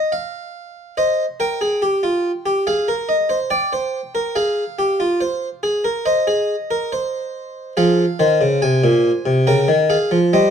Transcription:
0.00 0.12 D#5 medium
0.12 0.95 F5 medium
0.97 1.24 C5 medium
0.97 1.24 D#5 medium
1.40 1.60 A#4 medium
1.40 2.63 G5 medium
1.61 1.82 G#4 medium
1.82 2.03 G4 medium
2.03 2.30 F4 medium
2.46 2.66 G4 medium
2.67 2.88 G#4 medium
2.67 2.93 F5 medium
2.88 3.14 A#4 medium
3.09 3.35 D#5 medium
3.29 3.51 C5 medium
3.50 3.72 D5 medium
3.50 4.34 G5 medium
3.73 3.99 C5 medium
4.15 4.36 A#4 medium
4.36 4.63 G#4 medium
4.36 6.02 F5 medium
4.79 5.00 G4 medium
5.00 5.21 F4 medium
5.21 5.47 C5 medium
5.63 5.84 G#4 medium
5.84 6.05 A#4 medium
6.06 6.27 C5 medium
6.06 7.73 D#5 medium
6.27 6.54 G#4 medium
6.71 6.91 A#4 medium
6.92 7.75 C5 medium
7.77 8.04 F3 medium
7.77 8.03 G#4 medium
7.77 8.60 F5 medium
8.19 8.40 D#3 medium
8.19 9.43 C5 medium
8.41 8.61 C#3 medium
8.62 8.83 C3 medium
8.62 9.45 G#5 medium
8.84 9.10 A#2 medium
9.26 9.46 C3 medium
9.47 9.68 C#3 medium
9.47 9.74 A#4 medium
9.47 9.74 G5 medium
9.68 9.95 D#3 medium
9.90 10.17 G#4 medium
9.90 10.16 F5 medium
10.11 10.32 F3 medium
10.33 10.50 G3 loud
10.33 10.50 C5 medium
10.33 10.50 D#5 medium

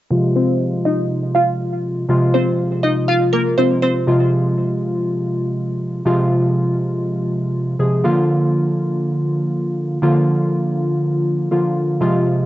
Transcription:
0.10 2.05 C3 medium
0.10 2.05 F3 medium
0.10 2.05 G#3 medium
0.10 2.05 F4 medium
0.36 0.47 C4 medium
0.36 0.46 C5 medium
0.85 1.06 D#4 medium
0.85 1.05 D#5 medium
1.35 1.55 F4 medium
1.35 1.55 F5 medium
2.09 3.55 C3 medium
2.09 3.55 F3 medium
2.09 3.55 G#3 medium
2.09 3.55 F4 medium
2.34 2.45 C4 medium
2.34 2.45 C5 medium
2.83 3.04 D#4 medium
2.83 3.04 D#5 medium
3.08 3.29 F4 medium
3.08 3.28 F5 medium
3.33 3.44 A#3 medium
3.33 3.44 A#4 medium
3.58 4.06 C3 soft
3.58 4.06 F3 soft
3.58 4.06 G#3 soft
3.58 3.69 C4 medium
3.58 4.07 F4 medium
3.58 3.69 C5 medium
3.82 3.94 C4 medium
3.82 3.93 C5 medium
4.07 6.02 C3 medium
4.07 6.02 F3 medium
4.07 6.02 G#3 medium
4.07 6.02 F4 medium
6.05 7.76 C3 medium
6.05 7.76 F3 medium
6.05 7.76 G#3 medium
6.05 7.76 F4 medium
7.79 8.04 C3 medium
7.79 8.03 F3 soft
7.79 8.04 G#3 medium
7.79 8.04 G#4 medium
8.04 9.98 D3 medium
8.04 9.99 F3 medium
8.04 9.99 A#3 medium
8.04 9.99 F4 medium
10.02 11.48 D3 medium
10.02 11.48 F3 medium
10.02 11.48 A#3 medium
10.02 11.49 F4 medium
11.51 12.01 D3 medium
11.51 12.00 F3 medium
11.51 12.01 A#3 medium
11.51 12.00 F4 medium
12.00 12.46 C3 medium
12.00 12.46 F3 medium
12.00 12.46 G#3 medium
12.00 12.46 F4 medium

